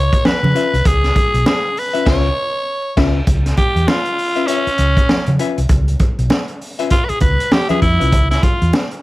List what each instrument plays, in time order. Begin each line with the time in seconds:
Already playing: alto saxophone C#5
0.13 kick, closed hi-hat
0.25 alto saxophone B4, snare, high conga
0.43 fingered electric bass C#3, high conga
0.55 hollow-body jazz guitar C#4 F4 B4 E5, closed hi-hat
0.73 fingered electric bass C2, closed hi-hat
0.85 fingered electric bass C#2, alto saxophone G#4, kick, closed hi-hat, muted conga
1.04 snare, closed hi-hat
1.16 kick, closed hi-hat, muted conga
1.34 fingered electric bass B1, closed hi-hat
1.46 alto saxophone G#4, snare, high conga
1.77 alto saxophone B4, open hi-hat
1.94 hollow-body jazz guitar C#4 F4 B4 E5, closed hi-hat
2.06 fingered electric bass C#2, hollow-body jazz guitar C#4 F4 B4 E5, alto saxophone C#5, kick, snare, crash
2.97 fingered electric bass C#2, hollow-body jazz guitar C#4 F4 B4 E5, kick, snare, crash
3.27 fingered electric bass C#2, kick, closed hi-hat, muted conga
3.46 snare, closed hi-hat
3.57 alto saxophone G4, kick, closed hi-hat, muted conga
3.76 fingered electric bass E2, closed hi-hat
3.88 alto saxophone F4, snare, high conga
4.05 closed hi-hat
4.19 open hi-hat
4.36 hollow-body jazz guitar C#4 F4 B4 E5, closed hi-hat
4.47 alto saxophone C#4, hollow-body jazz guitar C#4 F4 B4 E5, closed hi-hat
4.67 muted fingered electric bass stroke, closed hi-hat
4.78 fingered electric bass C#2, closed hi-hat, muted conga
4.97 kick, closed hi-hat
5.09 snare, high conga
5.26 fingered electric bass C#3, closed hi-hat, high conga
5.39 hollow-body jazz guitar C#4 F4 B4 E5, closed hi-hat
5.58 fingered electric bass C2, closed hi-hat
5.69 fingered electric bass C#2, kick, closed hi-hat, muted conga
5.88 closed hi-hat
6.00 kick, closed hi-hat, muted conga
6.18 fingered electric bass B1, closed hi-hat
6.30 snare, high conga
6.48 closed hi-hat
6.61 open hi-hat
6.79 hollow-body jazz guitar C#4 F4 B4 E5, closed hi-hat
6.90 alto saxophone F4, kick, closed hi-hat
7.05 alto saxophone B4
7.09 alto saxophone G#4, muted fingered electric bass stroke, closed hi-hat
7.20 fingered electric bass C#2, alto saxophone B4, kick, closed hi-hat, low conga
7.40 closed hi-hat
7.52 alto saxophone G4, snare, high conga
7.69 hollow-body jazz guitar C#4 F4 B4 E5, alto saxophone G#4, closed hi-hat, high conga
7.82 fingered electric bass F2, alto saxophone E4, kick, closed hi-hat
7.99 fingered electric bass C2, hollow-body jazz guitar C#4 F4 B4 E5, closed hi-hat
8.12 fingered electric bass C#2, kick, closed hi-hat, muted conga
8.30 alto saxophone E4, snare, closed hi-hat
8.42 alto saxophone F4, kick, closed hi-hat, muted conga
8.62 fingered electric bass E2, closed hi-hat
8.73 snare, high conga
8.91 closed hi-hat